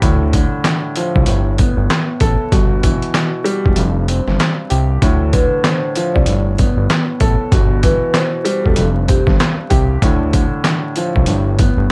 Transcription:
0.02 0.46 D2 loud
0.02 1.26 A2 medium
0.02 kick loud
0.02 closed hi-hat loud
0.02 sleigh bells medium
0.33 1.28 D3 medium
0.33 kick loud
0.33 closed hi-hat medium
0.33 sleigh bells medium
0.64 snare loud
0.64 clap medium
0.64 closed hi-hat medium
0.64 sleigh bells medium
0.96 1.28 F3 medium
0.96 closed hi-hat medium
0.96 sleigh bells medium
1.16 1.26 C2 medium
1.16 kick medium
1.26 1.71 G1 loud
1.26 2.53 A2 medium
1.26 closed hi-hat loud
1.26 sleigh bells medium
1.58 2.53 B3 medium
1.58 kick medium
1.58 closed hi-hat medium
1.58 sleigh bells medium
1.77 1.88 G1 medium
1.90 snare loud
1.90 clap loud
1.90 closed hi-hat medium
1.90 sleigh bells soft
2.20 2.37 A1 loud
2.20 2.52 A4 medium
2.20 kick loud
2.20 closed hi-hat medium
2.20 sleigh bells medium
2.52 2.96 G1 loud
2.52 3.77 B2 medium
2.52 kick loud
2.52 closed hi-hat loud
2.52 sleigh bells medium
2.83 3.77 E3 medium
2.83 kick medium
2.83 closed hi-hat medium
2.83 sleigh bells medium
3.02 closed hi-hat medium
3.14 snare loud
3.14 clap medium
3.14 closed hi-hat medium
3.14 sleigh bells medium
3.44 3.76 G3 loud
3.44 closed hi-hat medium
3.44 sleigh bells medium
3.66 3.76 E1 medium
3.66 kick medium
3.76 4.21 F1 loud
3.76 5.02 G2 medium
3.76 closed hi-hat loud
3.76 sleigh bells medium
4.08 5.02 C4 medium
4.08 closed hi-hat medium
4.08 sleigh bells medium
4.27 4.38 G1 medium
4.27 snare soft
4.39 snare loud
4.39 clap medium
4.39 closed hi-hat medium
4.39 sleigh bells soft
4.70 4.99 C2 medium
4.70 5.02 G4 medium
4.70 closed hi-hat medium
4.70 sleigh bells medium
5.02 5.46 D2 loud
5.02 6.26 A2 medium
5.02 kick loud
5.02 closed hi-hat loud
5.02 sleigh bells medium
5.33 6.28 D3 medium
5.33 5.62 B4 medium
5.33 kick medium
5.33 closed hi-hat medium
5.33 sleigh bells medium
5.64 snare loud
5.64 clap medium
5.64 closed hi-hat medium
5.64 sleigh bells medium
5.95 6.28 F3 loud
5.95 closed hi-hat medium
5.95 sleigh bells medium
6.14 6.26 C2 medium
6.14 6.42 D5 medium
6.14 kick medium
6.26 6.71 G1 loud
6.26 7.52 A2 medium
6.26 closed hi-hat loud
6.26 sleigh bells medium
6.58 7.53 B3 medium
6.58 kick loud
6.58 closed hi-hat medium
6.58 sleigh bells medium
6.77 6.88 G1 medium
6.90 snare loud
6.90 clap medium
6.90 closed hi-hat medium
6.90 sleigh bells soft
7.20 7.37 A1 medium
7.20 7.52 A4 medium
7.20 kick loud
7.20 closed hi-hat medium
7.20 sleigh bells medium
7.51 7.96 G1 loud
7.51 8.77 B2 medium
7.51 kick loud
7.51 closed hi-hat loud
7.51 sleigh bells medium
7.83 8.77 E3 medium
7.83 8.12 B4 medium
7.83 kick medium
7.83 closed hi-hat medium
7.83 sleigh bells medium
8.14 snare loud
8.14 clap medium
8.14 closed hi-hat medium
8.14 sleigh bells medium
8.45 8.77 G3 loud
8.45 closed hi-hat medium
8.45 sleigh bells medium
8.64 8.76 E1 medium
8.64 8.76 A4 medium
8.64 kick medium
8.76 9.21 F1 loud
8.76 10.02 G2 medium
8.76 closed hi-hat loud
8.76 sleigh bells medium
9.08 10.02 C4 medium
9.08 9.26 G4 medium
9.08 kick loud
9.08 closed hi-hat medium
9.08 sleigh bells medium
9.27 9.38 G1 medium
9.27 kick medium
9.27 snare soft
9.39 snare loud
9.39 clap medium
9.39 closed hi-hat medium
9.39 sleigh bells soft
9.70 9.98 C2 loud
9.70 10.02 G4 medium
9.70 kick loud
9.70 closed hi-hat medium
9.70 sleigh bells medium
10.02 10.46 D2 loud
10.02 11.26 A2 medium
10.02 kick loud
10.02 closed hi-hat loud
10.02 sleigh bells medium
10.33 11.28 D3 medium
10.33 kick loud
10.33 closed hi-hat medium
10.33 sleigh bells medium
10.64 snare loud
10.64 clap medium
10.64 closed hi-hat medium
10.64 sleigh bells medium
10.96 11.28 F3 loud
10.96 closed hi-hat medium
10.96 sleigh bells medium
11.16 11.26 C2 medium
11.16 kick medium
11.26 11.71 G1 loud
11.26 11.92 A2 medium
11.26 closed hi-hat loud
11.26 sleigh bells medium
11.58 11.92 B3 medium
11.58 kick medium
11.58 closed hi-hat medium
11.58 sleigh bells medium
11.77 11.88 G1 medium

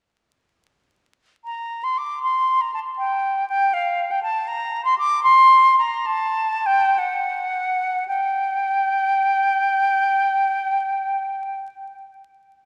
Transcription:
1.45 1.85 A#5 medium
1.84 1.99 C6 medium
1.98 2.23 D6 medium
2.23 2.63 C6 medium
2.61 2.74 A#5 medium
2.74 2.80 A5 medium
2.98 3.47 G5 medium
3.49 3.75 G5 medium
3.73 4.13 F5 medium
4.11 4.22 G5 medium
4.23 4.49 A5 medium
4.48 4.84 A#5 medium
4.85 4.97 C6 medium
4.98 5.23 D6 loud
5.23 5.76 C6 medium
5.78 6.08 A#5 medium
6.06 6.68 A5 medium
6.66 7.00 G5 medium
6.98 8.07 F#5 medium
8.08 11.58 G5 medium

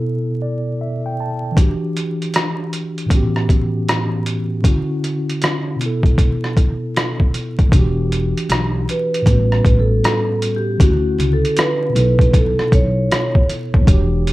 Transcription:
0.00 1.51 B2 medium
0.00 1.53 B3 medium
0.00 1.55 E4 medium
0.00 1.56 A4 medium
0.42 0.77 D5 medium
0.81 1.04 E5 medium
1.06 1.18 G5 medium
1.20 1.55 A5 medium
1.51 3.05 E3 medium
1.51 3.07 D4 medium
1.57 3.08 F#4 medium
1.57 kick loud
1.57 closed hi-hat medium
1.62 3.10 G4 medium
1.97 closed hi-hat medium
2.22 closed hi-hat soft
2.34 cross-stick loud
2.34 closed hi-hat medium
2.73 closed hi-hat medium
2.98 closed hi-hat soft
3.06 4.59 A2 medium
3.06 4.60 E3 medium
3.06 4.61 B3 medium
3.10 4.62 C#4 medium
3.10 4.63 F#4 medium
3.10 kick medium
3.10 closed hi-hat medium
3.16 4.64 G4 medium
3.36 cross-stick soft
3.49 kick medium
3.49 closed hi-hat medium
3.89 cross-stick loud
3.89 closed hi-hat medium
4.26 closed hi-hat medium
4.62 5.79 D3 medium
4.62 5.80 C#4 medium
4.62 5.80 E4 medium
4.62 kick loud
4.62 closed hi-hat medium
4.68 5.81 F#4 medium
5.04 closed hi-hat medium
5.29 closed hi-hat soft
5.42 cross-stick loud
5.42 closed hi-hat medium
5.76 7.66 B2 medium
5.76 7.68 B3 medium
5.81 7.70 E4 medium
5.81 closed hi-hat medium
5.86 7.71 A4 medium
6.03 kick medium
6.03 closed hi-hat soft
6.18 kick medium
6.18 closed hi-hat medium
6.44 cross-stick soft
6.57 kick medium
6.57 closed hi-hat soft
6.96 cross-stick loud
6.96 closed hi-hat medium
7.20 kick medium
7.34 closed hi-hat medium
7.59 kick medium
7.59 closed hi-hat soft
7.69 8.31 E1 loud
7.69 9.21 E3 medium
7.69 9.23 D4 medium
7.69 kick loud
7.73 9.25 F#4 medium
7.73 closed hi-hat medium
7.79 9.26 G4 medium
8.12 closed hi-hat medium
8.37 closed hi-hat soft
8.49 8.84 B1 medium
8.49 cross-stick loud
8.49 closed hi-hat medium
8.89 9.81 B4 medium
8.89 closed hi-hat medium
9.14 closed hi-hat soft
9.22 10.75 A2 medium
9.22 10.76 G3 medium
9.26 9.61 A1 loud
9.26 10.77 B3 medium
9.26 10.79 C#4 medium
9.26 kick medium
9.26 closed hi-hat medium
9.32 10.80 F#4 medium
9.52 cross-stick soft
9.65 10.00 A1 loud
9.65 kick loud
9.65 closed hi-hat medium
9.80 10.58 A4 medium
10.04 cross-stick loud
10.04 closed hi-hat medium
10.42 closed hi-hat medium
10.56 10.79 G4 medium
10.78 11.15 D2 loud
10.78 11.94 D3 medium
10.78 11.95 C#4 medium
10.78 11.95 E4 medium
10.78 kick loud
10.78 closed hi-hat medium
10.82 11.34 F#4 medium
10.82 11.97 F#4 medium
11.18 11.41 C#2 loud
11.18 closed hi-hat medium
11.33 11.58 A4 medium
11.45 closed hi-hat soft
11.57 11.97 B4 medium
11.57 cross-stick loud
11.57 closed hi-hat medium
11.89 13.81 B2 medium
11.89 13.82 B3 medium
11.95 12.54 B1 loud
11.95 13.84 E4 medium
11.95 12.32 B4 medium
11.95 closed hi-hat medium
12.00 13.86 A4 medium
12.19 kick medium
12.19 closed hi-hat soft
12.33 12.74 A4 loud
12.33 kick loud
12.33 closed hi-hat medium
12.59 muted upright bass stroke soft
12.59 cross-stick soft
12.72 13.07 B1 medium
12.72 13.46 C#5 loud
12.72 kick loud
12.72 closed hi-hat medium
13.12 cross-stick loud
13.12 closed hi-hat medium
13.35 kick medium
13.50 closed hi-hat medium
13.74 13.86 D#2 medium
13.74 kick medium
13.81 14.33 E3 medium
13.81 14.33 D4 medium
13.87 14.33 E1 loud
13.87 14.33 F#4 medium
13.87 kick loud
13.87 closed hi-hat medium
13.92 14.33 G4 medium
14.27 closed hi-hat medium

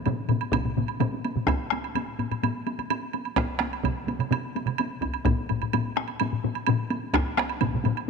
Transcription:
0.06 taiko low-mid medium
0.06 taiko mid medium
0.06 taiko high medium
0.06 high woodblock soft
0.19 taiko high soft
0.28 taiko low-mid medium
0.28 taiko mid medium
0.28 taiko high medium
0.28 high woodblock soft
0.41 taiko high soft
0.41 high woodblock soft
0.52 taiko loud
0.52 taiko low-mid medium
0.52 taiko mid medium
0.52 taiko high medium
0.52 high woodblock medium
0.65 taiko low-mid medium
0.65 taiko mid medium
0.65 taiko high soft
0.76 taiko low-mid medium
0.76 taiko mid medium
0.76 taiko high medium
0.88 taiko high soft
0.88 high woodblock soft
1.00 taiko low-mid medium
1.00 taiko mid loud
1.00 taiko high medium
1.00 high woodblock soft
1.13 taiko high soft
1.24 taiko high medium
1.24 high woodblock soft
1.35 taiko low-mid medium
1.35 taiko mid medium
1.35 taiko high soft
1.47 taiko rim medium
1.47 taiko loud
1.47 taiko high medium
1.47 high woodblock soft
1.71 taiko rim medium
1.71 taiko high soft
1.71 high woodblock soft
1.84 taiko high soft
1.84 high woodblock soft
1.95 taiko low-mid medium
1.95 taiko high medium
1.95 high woodblock soft
2.08 taiko high soft
2.19 taiko low-mid medium
2.19 taiko high soft
2.19 high woodblock soft
2.31 taiko low-mid medium
2.31 taiko high soft
2.31 high woodblock soft
2.43 taiko low-mid medium
2.43 taiko high medium
2.43 high woodblock soft
2.56 taiko high soft
2.66 taiko high medium
2.66 high woodblock soft
2.79 taiko low-mid medium
2.79 taiko high soft
2.79 high woodblock soft
2.90 taiko high medium
2.90 high woodblock medium
3.02 taiko high soft
3.13 taiko high soft
3.13 high woodblock soft
3.25 taiko high soft
3.25 high woodblock soft
3.36 taiko rim medium
3.36 taiko loud
3.36 taiko high medium
3.36 high woodblock soft
3.60 taiko rim medium
3.60 taiko high medium
3.60 high woodblock soft
3.72 taiko high soft
3.72 high woodblock soft
3.84 taiko medium
3.84 taiko mid medium
3.84 taiko high medium
3.84 high woodblock soft
3.97 taiko high soft
4.07 taiko mid medium
4.07 taiko high soft
4.07 high woodblock soft
4.19 taiko mid medium
4.19 taiko high soft
4.19 high woodblock soft
4.31 taiko mid loud
4.31 taiko high medium
4.31 high woodblock medium
4.43 taiko high soft
4.55 taiko high medium
4.55 high woodblock soft
4.66 taiko mid medium
4.66 taiko high soft
4.66 high woodblock soft
4.78 taiko high medium
4.78 high woodblock medium
4.91 taiko high soft
5.02 taiko medium
5.02 taiko high soft
5.02 high woodblock soft
5.14 taiko high soft
5.14 high woodblock soft
5.25 taiko loud
5.25 taiko low-mid medium
5.25 taiko high medium
5.25 high woodblock soft
5.49 taiko low-mid medium
5.49 taiko high soft
5.49 high woodblock soft
5.62 taiko low-mid medium
5.62 taiko high soft
5.62 high woodblock soft
5.73 taiko low-mid loud
5.73 taiko high medium
5.73 high woodblock medium
5.85 taiko high soft
5.96 taiko rim medium
5.96 taiko high medium
5.96 high woodblock soft
6.08 taiko high soft
6.08 high woodblock soft
6.20 taiko low-mid medium
6.20 taiko high medium
6.20 high woodblock medium
6.33 taiko low-mid medium
6.33 taiko high soft
6.44 taiko low-mid loud
6.44 taiko high medium
6.55 taiko high soft
6.55 high woodblock soft
6.66 taiko low-mid loud
6.66 taiko high medium
6.66 high woodblock medium
6.79 taiko high soft
6.90 taiko high medium
6.90 high woodblock soft
7.03 taiko high soft
7.14 taiko rim medium
7.14 taiko loud
7.14 taiko high medium
7.14 high woodblock medium
7.37 taiko rim medium
7.37 taiko high medium
7.37 high woodblock soft
7.49 taiko high soft
7.49 high woodblock soft
7.61 taiko medium
7.61 taiko low-mid medium
7.61 taiko mid medium
7.61 taiko high medium
7.61 high woodblock soft
7.72 taiko low-mid medium
7.72 taiko mid medium
7.72 taiko high soft
7.84 taiko low-mid loud
7.84 taiko mid medium
7.84 taiko high medium
7.84 high woodblock soft
7.96 taiko high soft
7.96 high woodblock soft

